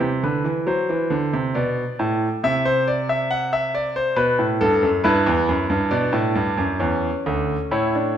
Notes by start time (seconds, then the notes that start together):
0.00 C3
0.23 D3 B4
0.44 E3
0.67 F#3 C5
0.89 E3
1.10 D3
1.33 C3
1.55 B2 D5
1.99 A2
2.44 C3 E5
2.65 C5
2.87 D5
3.09 E5
3.31 F#5
3.53 E5
3.75 D5
3.96 C5
4.16 B2 B4
4.39 A2
4.61 G2 A4
4.83 F#2
5.04 G2 E4 B4
5.27 E2
5.49 F#2
5.70 G2
5.91 B2 D4 D5
6.13 A2
6.35 G2
6.58 F#2
6.79 E2 C#4
7.26 D2
7.71 A2 E4 C#5
7.95 D4